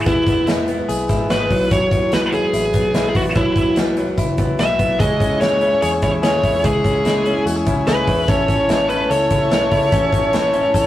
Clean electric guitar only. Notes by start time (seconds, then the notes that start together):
Already playing: E4 G#4
0.06 B3
0.27 B3
0.47 E4
0.68 B3
0.89 G#4
1.09 E4
1.30 F#4
1.40 G#4
1.51 F#3
1.71 F#3
1.92 F#3
2.13 B3
2.33 F#3
2.54 E4
2.74 B3
2.95 E4
3.15 B3
3.36 F#3
3.57 F#3
3.77 B3
3.98 F#3
4.18 E4
4.39 B3
4.60 E4
4.80 B3
5.00 G#3
5.20 C#4
5.41 E4
5.62 C#4
5.82 G#4
6.02 E4
6.23 G#4
6.44 E4
6.64 G#3
6.85 C#4
7.06 E4
7.26 C#4
7.46 F#4
7.56 G#4
7.67 E4
7.88 G#4
8.08 E4
8.28 C#4
8.49 C#4
8.69 E4
8.90 C#4
9.10 A4
9.31 E4
9.51 A4
9.72 E4
9.92 C#4
10.13 C#4
10.33 E4
10.54 C#4
10.74 A4